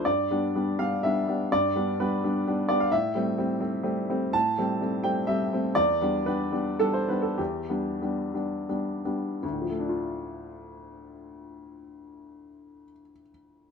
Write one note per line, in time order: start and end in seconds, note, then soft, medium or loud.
0.05 0.29 G2 soft
0.05 0.78 D5 medium
0.31 0.52 G3 soft
0.31 0.52 B3 soft
0.31 0.52 D4 soft
0.55 0.76 G3 soft
0.55 0.77 B3 soft
0.55 0.77 D4 soft
0.79 1.00 G3 soft
0.79 1.01 B3 soft
0.79 1.01 D4 soft
0.79 1.03 F5 medium
1.03 1.25 G3 soft
1.03 1.25 B3 soft
1.03 1.25 D4 soft
1.03 1.51 E5 medium
1.28 1.49 G3 soft
1.28 1.49 B3 soft
1.28 1.49 D4 soft
1.52 1.74 G2 medium
1.52 1.98 D5 medium
1.75 1.96 G3 soft
1.75 1.97 B3 soft
1.75 1.97 D4 soft
2.00 2.20 G3 soft
2.00 2.21 B3 soft
2.00 2.21 D4 soft
2.00 2.22 B4 medium
2.24 2.44 G3 soft
2.24 2.44 B3 soft
2.24 2.44 D4 soft
2.47 2.67 G3 soft
2.47 2.67 B3 soft
2.47 2.68 D4 soft
2.69 2.90 G3 soft
2.69 2.90 B3 soft
2.69 2.90 D4 soft
2.69 2.80 D5 medium
2.80 2.92 F5 medium
2.92 3.15 A2 medium
2.92 4.34 E5 medium
3.15 3.36 G3 soft
3.15 3.36 A3 soft
3.15 3.36 C4 soft
3.38 3.59 G3 soft
3.38 3.59 A3 soft
3.38 3.59 C4 soft
3.60 3.81 G3 soft
3.60 3.82 A3 soft
3.60 3.82 C4 soft
3.83 4.06 G3 soft
3.83 4.06 A3 soft
3.83 4.06 C4 soft
4.10 4.32 G3 soft
4.10 4.32 A3 soft
4.10 4.32 C4 soft
4.33 4.57 A2 medium
4.33 5.04 A5 medium
4.58 4.79 G3 soft
4.58 4.79 A3 soft
4.58 4.79 C4 soft
4.81 5.02 G3 soft
4.81 5.03 A3 soft
4.81 5.03 C4 soft
5.04 5.26 G3 soft
5.04 5.26 A3 soft
5.04 5.26 C4 soft
5.04 5.28 G5 medium
5.27 5.50 G3 soft
5.27 5.50 A3 soft
5.27 5.50 C4 medium
5.27 5.52 E5 medium
5.53 5.75 G3 soft
5.53 5.75 A3 soft
5.53 5.75 C4 soft
5.75 6.00 E2 medium
5.75 6.26 D5 medium
6.01 6.25 G3 soft
6.01 6.24 B3 soft
6.01 6.25 D4 soft
6.26 6.51 G3 soft
6.26 6.51 B3 soft
6.26 6.51 D4 soft
6.26 6.80 B4 medium
6.52 6.77 G3 soft
6.52 6.78 B3 soft
6.52 6.77 D4 soft
6.79 7.05 G3 soft
6.79 7.06 B3 soft
6.79 7.06 D4 soft
6.79 6.94 A4 medium
6.93 7.08 C5 soft
7.09 7.36 G3 soft
7.09 7.36 B3 soft
7.09 7.36 D4 soft
7.09 7.23 B4 medium
7.22 7.38 A4 soft
7.38 7.69 E2 soft
7.38 8.69 G4 medium
7.70 7.99 G3 soft
7.70 7.99 B3 soft
7.70 7.99 D4 soft
8.02 8.32 G3 soft
8.02 8.32 B3 soft
8.02 8.32 D4 soft
8.34 8.65 G3 soft
8.34 8.65 B3 soft
8.34 8.66 D4 soft
8.69 9.01 G3 soft
8.69 9.01 B3 soft
8.69 9.01 D4 soft
9.05 9.38 G3 soft
9.05 9.38 B3 soft
9.05 9.38 D4 soft
9.43 12.83 D2 soft
9.52 12.92 A2 soft
9.62 13.02 F3 soft
9.71 13.10 A3 soft
9.80 13.20 D4 soft
9.89 13.29 F4 soft